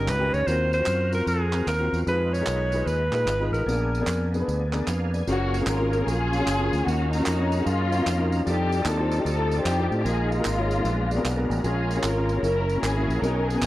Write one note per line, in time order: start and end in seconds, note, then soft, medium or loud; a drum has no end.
0.00 0.28 G2 medium
0.00 0.45 G3 medium
0.00 0.45 C#4 medium
0.00 0.45 D#4 medium
0.00 0.10 A#4 medium
0.00 0.45 A#4 medium
0.07 0.29 C#2 medium
0.07 0.35 B4 medium
0.07 clap medium
0.07 tambourine medium
0.18 0.41 C#4 medium
0.18 0.41 D#4 medium
0.18 0.41 G4 medium
0.18 0.41 A#4 medium
0.33 0.45 D2 medium
0.33 0.48 C#5 loud
0.33 tambourine soft
0.46 0.81 D#2 medium
0.46 1.09 D#3 medium
0.46 0.74 C4 medium
0.46 2.04 C4 medium
0.46 0.74 F4 medium
0.46 2.04 F4 medium
0.46 2.04 F#4 medium
0.46 0.75 F#4 medium
0.46 2.04 A#4 medium
0.46 0.75 A#4 medium
0.46 0.73 C5 loud
0.46 tambourine medium
0.73 1.11 C5 loud
0.73 tambourine medium
0.79 1.02 C4 medium
0.79 1.02 F4 medium
0.79 1.03 F#4 medium
0.79 1.03 C5 medium
0.86 1.21 F#2 medium
0.86 clap loud
0.86 tambourine loud
1.11 1.39 C4 medium
1.11 1.39 F4 medium
1.11 1.39 F#4 medium
1.11 1.39 A#4 medium
1.11 1.27 A#4 medium
1.11 tambourine medium
1.26 1.61 F2 medium
1.26 1.65 G#4 medium
1.26 tambourine medium
1.52 1.69 C4 medium
1.52 1.70 F4 medium
1.52 1.70 F#4 medium
1.52 1.70 A#4 medium
1.52 clap medium
1.52 tambourine medium
1.66 1.89 D#2 medium
1.66 1.99 A#4 loud
1.66 clap medium
1.66 tambourine medium
1.79 2.01 C4 medium
1.79 2.01 F4 medium
1.79 2.02 F#4 medium
1.79 2.02 A#4 medium
1.93 2.05 E2 medium
1.93 tambourine soft
2.06 2.41 F2 medium
2.06 3.64 G#3 medium
2.06 3.64 D#4 medium
2.06 2.35 D#4 medium
2.06 3.64 F4 medium
2.06 2.35 F4 medium
2.06 2.35 G#4 medium
2.06 3.65 B4 medium
2.06 2.35 B4 medium
2.06 2.34 B4 medium
2.06 tambourine medium
2.33 2.88 C#5 medium
2.33 tambourine medium
2.40 2.63 D#4 medium
2.40 2.63 F4 medium
2.40 2.64 G#4 medium
2.40 2.64 A#4 medium
2.46 2.81 B1 medium
2.46 clap loud
2.46 tambourine loud
2.72 3.00 D#4 medium
2.72 3.00 F4 medium
2.72 3.00 G#4 medium
2.72 3.00 B4 medium
2.72 tambourine medium
2.86 3.09 D#2 medium
2.86 3.52 B4 medium
2.86 tambourine medium
3.12 3.24 A#2 medium
3.12 3.30 D#4 medium
3.12 3.30 F4 medium
3.12 3.30 G#4 medium
3.12 3.30 B4 medium
3.12 clap medium
3.12 tambourine medium
3.26 3.49 G#1 medium
3.26 clap loud
3.26 tambourine medium
3.40 3.62 D#4 medium
3.40 3.62 F4 medium
3.40 3.62 G#4 medium
3.40 3.62 B4 medium
3.52 3.65 A1 medium
3.52 4.29 A#4 medium
3.52 tambourine medium
3.66 4.01 A#1 medium
3.66 4.30 A#2 medium
3.66 5.24 A#3 medium
3.66 5.24 B3 medium
3.66 3.95 B3 medium
3.66 5.24 D4 medium
3.66 3.95 D4 medium
3.66 5.24 G#4 medium
3.66 3.95 G#4 medium
3.66 3.95 A#4 medium
3.66 tambourine medium
3.94 tambourine medium
4.00 4.23 B3 medium
4.00 4.23 D4 medium
4.00 4.23 G#4 medium
4.00 4.24 A#4 medium
4.06 4.41 F2 medium
4.06 clap loud
4.06 tambourine loud
4.33 4.60 B3 medium
4.33 4.60 D4 medium
4.33 4.60 G#4 medium
4.33 4.38 A#4 medium
4.33 tambourine medium
4.39 4.63 B4 medium
4.48 4.82 D2 medium
4.48 tambourine medium
4.72 4.90 B3 medium
4.72 4.90 D4 medium
4.72 4.87 G#4 medium
4.72 4.88 A#4 medium
4.72 4.87 D5 medium
4.72 clap medium
4.72 tambourine medium
4.87 5.21 F2 medium
4.87 5.13 G#4 medium
4.87 5.12 B4 medium
4.87 5.12 F5 medium
4.87 clap medium
4.87 tambourine medium
5.13 5.52 B4 soft
5.13 5.51 D5 medium
5.13 5.27 G#5 medium
5.13 tambourine medium
5.27 5.61 F#1 loud
5.27 6.84 F#3 medium
5.27 6.84 A#3 medium
5.27 6.04 A#3 medium
5.27 5.55 C#4 medium
5.27 6.84 C#4 medium
5.27 5.66 C#4 medium
5.27 5.55 F4 medium
5.27 5.55 F#4 medium
5.27 5.66 F#4 loud
5.27 5.34 G4 medium
5.27 5.55 G#4 medium
5.27 5.55 A#4 medium
5.27 6.84 F5 medium
5.27 tambourine medium
5.32 6.85 G#4 medium
5.54 tambourine medium
5.60 5.73 C#4 medium
5.60 5.73 F4 medium
5.60 5.74 F#4 medium
5.60 5.74 G#4 medium
5.60 5.74 A#4 medium
5.66 6.01 G#1 loud
5.66 6.05 C#4 medium
5.66 6.05 F4 medium
5.66 6.05 A#4 loud
5.66 clap loud
5.66 tambourine loud
5.79 5.96 C#4 medium
5.79 5.96 F4 medium
5.79 5.96 F#4 medium
5.79 5.96 G#4 medium
5.79 5.97 A#4 medium
5.93 tambourine medium
5.99 6.32 C#4 medium
5.99 6.32 F4 medium
5.99 6.32 F#4 medium
5.99 6.32 G#4 medium
5.99 6.04 A4 medium
6.05 6.41 A#1 medium
6.05 6.82 C#4 medium
6.05 6.82 F4 medium
6.05 6.87 G#4 loud
6.05 6.35 A#4 medium
6.05 tambourine medium
6.33 tambourine medium
6.38 6.52 C#4 medium
6.38 6.53 F4 medium
6.38 6.53 F#4 medium
6.38 6.53 G#4 medium
6.38 6.53 C#5 medium
6.46 6.69 F#1 loud
6.46 clap loud
6.46 tambourine loud
6.58 6.81 C#4 medium
6.58 6.81 F4 medium
6.58 6.81 F#4 medium
6.58 6.81 G#4 medium
6.58 6.81 A#4 loud
6.73 6.85 D2 medium
6.73 tambourine medium
6.85 7.21 D#2 loud
6.85 8.42 D#3 medium
6.85 7.49 D#3 medium
6.85 7.11 A#3 medium
6.85 7.62 C#4 medium
6.85 8.42 C#4 medium
6.85 7.14 C#4 medium
6.85 8.43 D#4 medium
6.85 7.14 D#4 medium
6.85 7.14 F4 medium
6.85 7.11 F#4 loud
6.85 7.14 F#4 medium
6.85 6.93 G#4 medium
6.85 7.14 A#4 medium
6.85 8.43 F5 medium
6.85 tambourine medium
6.90 8.45 A#4 medium
7.12 7.63 A#3 medium
7.12 7.67 D#4 loud
7.12 7.88 F#4 medium
7.12 tambourine medium
7.19 7.33 C#4 medium
7.19 7.33 D#4 medium
7.19 7.33 F4 medium
7.19 7.33 F#4 medium
7.19 7.33 A#4 medium
7.26 7.61 F2 medium
7.26 clap loud
7.26 tambourine loud
7.39 7.56 C#4 medium
7.39 7.56 D#4 medium
7.39 7.56 F4 medium
7.39 7.56 F#4 medium
7.39 7.56 C#5 medium
7.52 tambourine medium
7.59 7.91 C#4 medium
7.59 7.91 D#4 medium
7.59 7.91 F4 medium
7.59 7.92 F#4 medium
7.59 7.92 G#4 medium
7.65 8.00 F#2 loud
7.65 8.41 A#3 medium
7.65 8.42 C#4 medium
7.65 8.32 F4 loud
7.65 tambourine medium
7.92 tambourine medium
7.98 8.12 C#4 medium
7.98 8.12 D#4 medium
7.98 8.12 F4 medium
7.98 8.12 F#4 medium
7.98 8.12 A#4 medium
8.06 8.40 F2 medium
8.06 clap loud
8.06 tambourine loud
8.18 8.40 C#4 medium
8.18 8.40 D#4 medium
8.18 8.40 F4 medium
8.18 8.40 F#4 medium
8.18 8.40 A#4 loud
8.32 tambourine medium
8.45 8.80 F2 medium
8.45 10.02 G3 medium
8.45 8.83 C4 medium
8.45 8.73 D4 medium
8.45 8.84 D#4 medium
8.45 8.73 D#4 medium
8.45 10.02 D#4 medium
8.45 8.73 F4 medium
8.45 10.02 F4 medium
8.45 8.73 G4 medium
8.45 8.83 G4 loud
8.45 8.74 A4 medium
8.45 10.02 A4 medium
8.45 10.02 D5 medium
8.45 tambourine medium
8.72 tambourine medium
8.78 8.92 D4 medium
8.78 8.92 D#4 medium
8.78 8.92 F4 medium
8.78 8.92 G4 medium
8.78 8.92 A4 medium
8.85 9.19 D#2 loud
8.85 9.23 C4 medium
8.85 9.23 D#4 medium
8.85 9.24 A4 loud
8.85 clap loud
8.85 tambourine loud
8.98 9.14 D4 medium
8.98 9.15 D#4 medium
8.98 9.15 F4 medium
8.98 9.15 G4 medium
8.98 9.15 C5 medium
9.12 tambourine medium
9.18 9.50 D4 medium
9.18 9.51 D#4 medium
9.18 9.51 F4 medium
9.18 9.51 G4 medium
9.18 9.51 C5 medium
9.24 9.59 D2 medium
9.24 9.64 C4 medium
9.24 9.63 D#4 medium
9.24 9.62 A4 loud
9.24 tambourine medium
9.52 tambourine medium
9.58 9.71 D4 medium
9.58 9.71 D#4 medium
9.58 9.71 F4 medium
9.58 9.72 G4 medium
9.58 9.72 C5 medium
9.64 9.87 F2 medium
9.64 10.02 C4 medium
9.64 10.02 D#4 medium
9.64 10.02 G4 loud
9.64 clap loud
9.64 tambourine loud
9.78 10.00 D4 medium
9.78 10.00 D#4 medium
9.78 10.00 F4 medium
9.78 10.00 G4 medium
9.78 10.00 C5 medium
9.91 10.03 A2 medium
9.91 tambourine medium
10.04 10.39 A#1 loud
10.04 10.67 A#2 medium
10.04 10.83 G#3 medium
10.04 10.32 A#3 medium
10.04 10.83 A#3 medium
10.04 10.80 D#4 medium
10.04 10.32 D#4 medium
10.04 10.83 D#4 medium
10.04 10.29 F4 medium
10.04 10.83 F4 medium
10.04 10.32 F4 medium
10.04 10.31 G#4 loud
10.04 10.32 G#4 medium
10.04 10.83 A#4 medium
10.04 10.33 A#4 medium
10.04 tambourine medium
10.30 11.46 G#3 medium
10.30 11.50 F4 loud
10.30 tambourine medium
10.39 10.51 A#3 medium
10.39 10.51 D#4 medium
10.39 10.51 F4 medium
10.39 10.52 G#4 medium
10.39 10.52 A#4 medium
10.45 10.79 G#1 loud
10.45 clap loud
10.45 tambourine loud
10.58 10.74 A#3 medium
10.58 10.74 D#4 medium
10.58 10.74 F4 medium
10.58 10.74 G#4 medium
10.58 10.74 C#5 medium
10.71 tambourine medium
10.78 10.85 A#3 medium
10.78 10.85 D#4 medium
10.78 10.85 F4 medium
10.78 10.85 G#4 medium
10.78 10.85 A#4 medium
10.84 11.18 A#1 medium
10.84 11.46 A#2 medium
10.84 11.63 F#3 medium
10.84 11.63 G#3 medium
10.84 11.62 B3 medium
10.84 11.63 D4 medium
10.84 10.91 A4 medium
10.84 tambourine medium
10.89 11.64 A#4 medium
11.11 11.23 D5 medium
11.11 tambourine medium
11.17 11.30 B3 medium
11.17 11.30 D4 medium
11.17 11.30 F#4 medium
11.17 11.30 G#4 medium
11.17 11.30 A#4 loud
11.25 11.46 B1 medium
11.25 11.48 F#5 medium
11.25 clap loud
11.25 tambourine loud
11.36 11.58 B3 medium
11.36 11.58 D4 medium
11.36 11.58 F#4 medium
11.36 11.59 G#4 medium
11.36 11.59 A#4 loud
11.49 11.62 A1 loud
11.49 11.62 A#5 medium
11.49 tambourine medium
11.63 11.98 A#1 loud
11.63 12.25 A#2 medium
11.63 12.42 G#3 medium
11.63 11.91 A#3 medium
11.63 12.42 A#3 medium
11.63 12.03 C#4 medium
11.63 11.91 C#4 medium
11.63 12.42 C#4 medium
11.63 12.03 F4 medium
11.63 11.91 F4 medium
11.63 12.42 F4 medium
11.63 12.00 G#4 medium
11.63 11.91 G#4 medium
11.63 11.91 A#4 medium
11.63 12.42 A#4 medium
11.63 tambourine medium
11.91 tambourine medium
11.96 12.09 A#3 medium
11.96 12.09 C#4 medium
11.96 12.09 F4 medium
11.96 12.10 G#4 medium
11.96 12.10 C#5 medium
12.03 12.37 G#1 medium
12.03 12.41 C#4 medium
12.03 12.41 F4 medium
12.03 12.41 A#4 loud
12.03 clap loud
12.03 tambourine loud
12.16 12.32 A#3 medium
12.16 12.32 C#4 medium
12.16 12.33 F4 medium
12.16 12.33 G#4 medium
12.16 12.33 A#4 medium
12.29 tambourine medium
12.36 12.43 A#3 medium
12.36 12.43 C#4 medium
12.36 12.43 F4 medium
12.36 12.43 G#4 medium
12.36 12.43 C#5 medium
12.42 12.77 F#1 loud
12.42 13.21 F#3 medium
12.42 13.21 A#3 medium
12.42 12.82 C#4 medium
12.42 13.21 C#4 medium
12.42 12.83 E4 medium
12.42 13.21 E4 medium
12.42 12.79 A#4 loud
12.42 13.21 A#4 medium
12.42 tambourine medium
12.69 tambourine medium
12.76 12.89 A#3 medium
12.76 12.89 C#4 medium
12.76 12.89 E4 medium
12.76 12.89 F#4 medium
12.76 12.89 A#4 medium
12.82 13.05 G#1 medium
12.82 13.20 C#4 medium
12.82 13.20 E4 medium
12.82 13.23 G#4 loud
12.82 clap loud
12.82 tambourine loud
12.96 13.17 A#3 medium
12.96 13.17 C#4 medium
12.96 13.17 E4 medium
12.96 13.18 F#4 medium
12.96 13.17 G#4 medium
13.08 13.20 A#1 medium
13.08 tambourine medium
13.22 13.56 B1 loud
13.22 13.66 B2 medium
13.22 13.66 F#3 medium
13.22 13.49 B3 medium
13.22 13.66 B3 medium
13.22 13.47 C#4 medium
13.22 13.50 C#4 medium
13.22 13.66 C#4 medium
13.22 13.47 D#4 medium
13.22 13.50 D#4 medium
13.22 13.66 D#4 medium
13.22 13.50 F#4 medium
13.22 13.66 G#4 medium
13.22 13.50 G#4 medium
13.22 13.48 A#4 loud
13.22 tambourine medium
13.48 13.66 C#4 medium
13.48 13.66 D#4 medium
13.48 13.66 G#4 loud
13.48 tambourine medium
13.54 13.66 B3 medium
13.54 13.66 C#4 medium
13.54 13.66 D#4 medium
13.54 13.66 F#4 medium
13.54 13.66 A#4 medium
13.62 13.66 G#1 loud
13.62 clap loud
13.62 tambourine loud